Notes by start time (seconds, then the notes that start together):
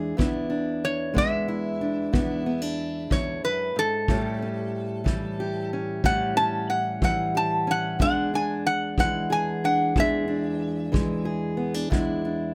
Already playing: E2 E3 G#3 D4 G#4
0.17 E2 B3 D4 E4, kick
0.50 D4
0.85 C#5
1.14 G#3 B3, kick
1.18 E5
1.48 E4
1.81 D4
2.13 E2 B3 D4 E4, kick
2.46 B3
2.62 D4
3.10 E2 C#5, kick
3.44 F#2 B4
3.76 G#2 A4
4.08 A2 G3 C#4 G4, kick
4.42 C#4
5.04 E3 G3, kick
5.40 G4
5.73 C#4
6.04 A2 G3 C#4 G4 F#5, kick
6.37 C#4 A5
6.70 F#5
7.02 E3 G3 F#5, kick
7.35 G4 A5
7.67 C#4 F#5
7.99 E2 G#3 D4 G#4 F#5, kick
8.34 D4 G#5
8.67 F#5
8.98 E3 G#3 F#5, kick
9.30 G#4 G#5
9.64 D4 F#5
9.96 E2 G#3 D4 G#4, kick
10.00 E5
10.28 D4
10.92 E3 G#3, kick
11.25 G#4
11.57 B3
11.74 D4
11.90 E2 G#3 D4 E4, kick
12.25 D4